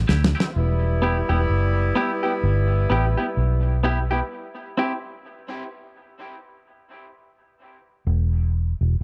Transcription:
0.08 0.33 D2 medium
0.08 0.22 C4 medium
0.08 0.22 E4 medium
0.08 0.23 G4 medium
0.08 snare medium
0.24 snare loud
0.35 0.44 C4 medium
0.35 0.44 E4 medium
0.35 0.43 G4 medium
0.40 snare medium
0.55 1.21 E1 medium
0.55 3.80 G3 medium
0.55 3.80 B3 medium
0.55 3.79 E4 medium
1.02 1.16 B3 medium
1.02 1.17 E4 medium
1.02 1.17 G4 medium
1.29 1.47 E1 medium
1.29 1.38 B3 medium
1.29 1.38 E4 medium
1.29 1.37 G4 medium
1.50 1.91 F#1 medium
1.95 2.10 B3 medium
1.95 2.10 E4 loud
1.95 2.11 G4 loud
2.23 2.32 B3 soft
2.23 2.32 E4 medium
2.23 2.31 G4 medium
2.43 2.85 G1 medium
2.90 3.14 A1 medium
2.90 3.04 B3 medium
2.90 3.05 E4 medium
2.90 3.05 G4 medium
3.17 3.26 B3 soft
3.17 3.26 E4 soft
3.17 3.25 G4 soft
3.37 4.20 B1 medium
3.83 3.98 B3 medium
3.83 3.98 E4 medium
3.83 3.99 G4 loud
4.11 4.20 B3 medium
4.11 4.19 E4 medium
4.11 4.19 G4 medium
4.77 4.92 C4 medium
4.77 4.92 E4 medium
4.77 4.93 G4 medium
8.07 8.72 E1 loud
8.81 8.98 E1 medium

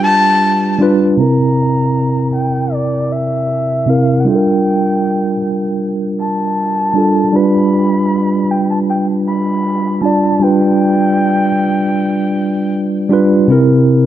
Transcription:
0.00 0.79 G3 medium
0.00 0.80 D4 medium
0.00 0.81 F4 medium
0.00 1.21 G4 medium
0.04 0.77 A5 loud
0.79 1.07 G3 medium
0.79 1.07 D4 medium
0.79 1.08 F4 medium
0.83 1.09 B4 loud
1.17 2.27 C3 medium
1.17 2.28 C4 medium
1.17 2.29 E4 medium
1.17 2.31 A#5 loud
1.21 2.29 A#4 medium
2.35 2.75 G5 medium
2.74 3.14 D5 medium
3.12 3.91 E5 medium
3.86 4.14 C3 medium
3.86 4.15 C4 medium
3.86 4.16 E4 medium
3.86 4.22 F5 medium
3.90 4.16 A#4 medium
4.20 4.29 F#5 medium
4.25 5.35 G3 medium
4.25 5.36 D4 medium
4.25 5.36 F4 medium
4.25 5.81 G5 medium
4.29 4.34 A4 medium
4.35 5.40 A#4 medium
6.20 7.37 A5 loud
6.94 7.22 G3 medium
6.94 7.23 D4 medium
6.94 7.23 F4 medium
6.98 7.24 A4 medium
7.32 8.43 G3 medium
7.32 8.43 D4 medium
7.32 8.44 F4 medium
7.32 8.53 B5 loud
7.36 8.45 B4 medium
8.51 8.70 G5 medium
8.71 8.79 A5 medium
8.90 9.07 G5 medium
9.28 10.00 B5 loud
10.01 10.30 G3 medium
10.01 10.30 D4 medium
10.01 10.31 F4 medium
10.01 10.44 A5 loud
10.05 10.32 D5 medium
10.40 11.50 G3 medium
10.40 11.51 D4 medium
10.40 11.52 F4 medium
10.40 12.73 G5 medium
10.44 11.52 B4 medium
13.09 13.37 G3 medium
13.09 13.38 D4 medium
13.09 13.39 F4 medium
13.13 13.39 B4 medium
13.48 14.06 C3 medium
13.48 14.06 C4 medium
13.48 14.06 E4 medium
13.52 14.06 A#4 loud

